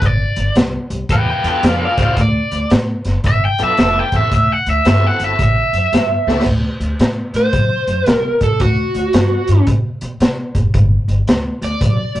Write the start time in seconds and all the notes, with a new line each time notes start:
0.02 G1 D5, kick, closed hi-hat
0.36 G1, closed hi-hat
0.55 C2, snare, closed hi-hat
0.90 C2, closed hi-hat
1.09 E2 B4 G5, kick, closed hi-hat
1.30 B4 G5
1.44 E2 B3 D4 F4 A4, closed hi-hat
1.48 B4 G5
1.63 F2 D5, snare, closed hi-hat
1.67 F5
1.85 D5 F5
1.97 C#2 C4 E4 F#4 C5, kick, closed hi-hat
2.03 D5 F5
2.17 D2, kick, closed hi-hat
2.21 D5
2.51 D2, closed hi-hat
2.70 A2, snare, closed hi-hat
3.05 F#1, snare, closed hi-hat
3.24 G1 E5, kick, closed hi-hat
3.45 G5
3.58 B1 B3 D4 F4 A4, closed hi-hat
3.64 E5
3.77 F1 E5, snare, closed hi-hat
3.99 G5
4.12 E2 C4 E4 F#4 A4, kick, closed hi-hat
4.16 E5
4.31 D2 E5, kick, closed hi-hat
4.52 F#5
4.66 D2 E5, closed hi-hat
4.85 G2 C4 E4 F#4 A4 E5, snare, closed hi-hat
5.07 F#5
5.20 G1, closed hi-hat
5.25 E5
5.39 A1, kick, closed hi-hat
5.43 E5
5.73 F#2, closed hi-hat
5.92 G2, snare, closed hi-hat
6.27 C#2 D3 C4 E4 F#4 A4, snare
6.42 snare
6.46 D2, kick, crash
6.80 D2, closed hi-hat
6.99 A2, snare, closed hi-hat
7.33 A2 C5, closed hi-hat
7.53 F#2, kick, closed hi-hat
7.87 F#2, closed hi-hat
8.06 C2, snare, closed hi-hat
8.10 A#4
8.41 C2 A4, kick, closed hi-hat
8.60 D2 F#4, kick, closed hi-hat
8.94 D2, closed hi-hat
9.13 G2, snare, closed hi-hat
9.48 G2, closed hi-hat
9.67 B2, kick, closed hi-hat
10.01 B2, closed hi-hat
10.20 C3, snare, closed hi-hat
10.55 F#1, kick, closed hi-hat
10.74 G1, kick, closed hi-hat
11.08 G1, closed hi-hat
11.27 D2, snare, closed hi-hat
11.62 D2 D5, closed hi-hat
11.81 B1, kick, closed hi-hat
12.15 B1, closed hi-hat